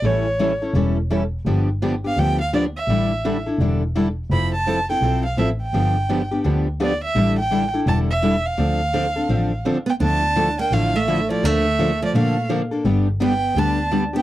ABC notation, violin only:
X:1
M:4/4
L:1/8
Q:"Swing" 1/4=169
K:Ddor
V:1 name="Violin"
^c3 z4 z | z3 f g f d e- | e3 z4 z | b a2 g2 f e g- |
g3 z3 d e- | e g2 z a e2 f- | f6 z g | [K:Dm] a3 g f e2 d |
e3 d f2 z2 | z2 g2 a2 z g |]